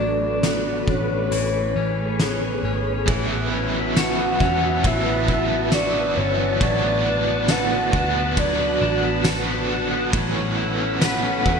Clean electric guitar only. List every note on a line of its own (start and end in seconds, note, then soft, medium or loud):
0.00 1.31 F#3 medium
0.00 0.44 B3 medium
0.00 0.87 D4 medium
0.44 1.79 B3 soft
0.88 1.41 D4 medium
1.32 3.08 E3 medium
1.76 2.64 C#4 medium
2.20 3.31 B3 medium
2.65 3.34 C#4 medium
3.09 4.84 E3 medium
3.31 3.75 B3 medium
3.53 4.40 C#4 medium
3.75 4.18 B3 medium
3.97 5.73 F#4 medium
4.19 4.62 B3 medium
4.41 5.29 C#4 medium
4.63 5.06 B3 medium
4.85 6.61 E3 medium
5.07 5.51 B3 medium
5.51 5.95 B3 medium
5.73 7.49 F#4 medium
5.95 6.39 B3 medium
6.17 6.70 C#4 medium
6.39 6.83 B3 medium
6.61 8.37 F#3 medium
6.84 7.27 B3 medium
7.06 7.92 D4 medium
7.28 7.72 B3 medium
7.50 9.25 A4 medium
7.72 8.15 B3 medium
7.93 8.80 D4 medium
8.15 8.59 B3 medium
8.37 10.13 F#3 medium
8.59 9.03 B3 medium
8.81 9.68 D4 medium
9.03 9.47 B3 medium
9.25 11.01 A4 medium
9.47 9.91 B3 medium
9.69 10.22 D4 medium
9.91 10.35 B3 medium
10.14 11.60 F#3 medium
10.35 10.77 C#4 medium
10.57 11.44 E4 medium
10.79 11.22 C#4 medium
11.01 11.60 B4 medium
11.23 11.60 C#4 medium
11.46 11.60 E4 medium